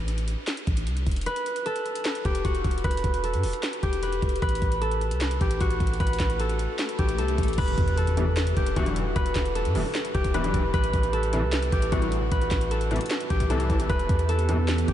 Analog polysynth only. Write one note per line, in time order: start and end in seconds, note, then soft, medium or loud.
8.17 8.26 B1 medium
8.17 8.26 G2 medium
8.17 8.26 E3 medium
8.76 9.04 B1 loud
8.76 9.04 G2 loud
8.76 9.04 E3 loud
9.75 9.83 B1 medium
9.75 9.83 G2 medium
9.75 9.83 E3 medium
10.34 10.62 B1 loud
10.34 10.62 G2 loud
10.34 10.62 E3 loud
11.33 11.41 C2 medium
11.33 11.41 A2 medium
11.33 11.41 E3 loud
11.92 12.20 C2 loud
11.92 12.20 A2 loud
11.92 12.20 E3 loud
12.91 12.99 C2 medium
12.91 12.99 A2 medium
12.91 12.99 E3 loud
13.50 13.78 C2 loud
13.50 13.78 A2 loud
13.50 13.78 E3 loud
14.49 14.57 B1 loud
14.49 14.57 G2 medium
14.49 14.57 E3 medium